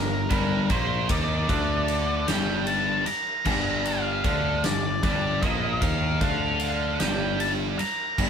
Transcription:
0.00 0.28 G1 medium
0.00 0.23 G2 medium
0.00 0.28 A#4 medium
0.30 0.67 G1 medium
0.30 0.69 G2 medium
0.30 0.69 G3 loud
0.30 0.72 A#4 medium
0.30 kick loud
0.30 ride medium
0.69 1.07 A#1 medium
0.69 1.08 A#2 loud
0.69 1.08 A#3 loud
0.69 1.10 C5 medium
0.69 kick loud
0.69 ride medium
1.09 1.46 D#2 medium
1.09 1.47 D#3 medium
1.09 1.48 D#4 loud
1.09 2.32 D5 medium
1.09 kick loud
1.09 ride loud
1.49 2.24 D2 medium
1.49 2.26 D3 medium
1.49 2.27 D4 loud
1.49 kick loud
1.49 ride medium
1.88 ride medium
2.28 3.03 G1 medium
2.28 3.05 G2 loud
2.28 3.06 G3 loud
2.28 2.68 G5 loud
2.28 snare loud
2.28 ride loud
2.67 3.06 A5 medium
2.67 ride medium
3.06 3.87 A#5 loud
3.06 muted distorted electric guitar stroke medium
3.06 muted overdriven electric guitar stroke medium
3.06 muted picked electric bass stroke soft
3.06 ride medium
3.45 4.21 G1 loud
3.45 4.23 G2 loud
3.45 4.23 G3 loud
3.45 kick loud
3.45 crash medium
3.85 4.23 F5 medium
3.85 ride medium
4.24 4.61 D2 medium
4.24 4.63 D3 loud
4.24 4.63 D4 medium
4.24 4.65 F5 medium
4.24 kick loud
4.24 ride medium
4.64 5.00 G1 medium
4.64 4.96 G2 medium
4.64 5.03 D5 medium
4.64 snare loud
4.64 ride medium
5.03 5.40 G1 medium
5.03 5.41 G2 medium
5.03 5.42 G3 loud
5.03 5.42 D5 medium
5.03 kick loud
5.03 ride medium
5.42 5.80 A#1 loud
5.42 5.81 A#2 medium
5.42 5.81 A#3 loud
5.42 5.83 D#5 medium
5.42 kick loud
5.42 ride medium
5.81 6.19 D#2 medium
5.81 6.20 D#3 medium
5.81 6.20 D#4 loud
5.81 6.96 F5 loud
5.81 kick loud
5.81 ride medium
6.20 6.96 D2 medium
6.20 6.99 D3 medium
6.20 6.99 D4 medium
6.20 kick loud
6.20 ride medium
6.60 ride medium
7.00 7.75 G1 medium
7.00 7.78 G2 medium
7.00 7.78 G3 loud
7.00 7.41 G5 loud
7.00 snare loud
7.00 ride medium
7.40 7.51 A5 medium
7.40 ride medium
7.79 8.30 A#5 loud
7.79 muted overdriven electric guitar stroke medium
7.79 muted distorted electric guitar stroke medium
7.79 muted picked electric bass stroke soft
7.79 ride medium
8.18 8.30 G1 medium
8.18 8.30 G2 medium
8.18 8.30 G3 loud
8.18 kick loud
8.18 crash medium

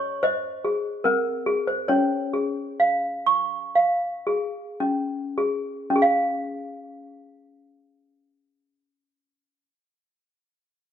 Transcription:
0.00 0.23 C#4 medium
0.00 0.23 G#4 medium
0.00 0.20 C#5 medium
0.00 0.23 C#6 medium
0.23 1.01 C5 medium
0.23 1.90 D#5 medium
0.65 1.45 G#4 medium
1.04 1.90 C4 medium
1.04 1.70 A#4 medium
1.46 1.90 G#4 medium
1.67 1.90 C5 medium
1.88 3.75 C#4 medium
1.88 4.76 C#5 medium
2.33 4.25 G#4 medium
2.80 3.74 F5 medium
3.27 5.37 C#6 medium
3.75 5.96 F5 medium
4.27 5.36 G#4 medium
4.80 5.89 C#4 medium
5.38 5.95 G#4 medium
5.90 9.11 C#4 medium
5.96 9.16 G#4 medium
6.02 9.23 F5 medium

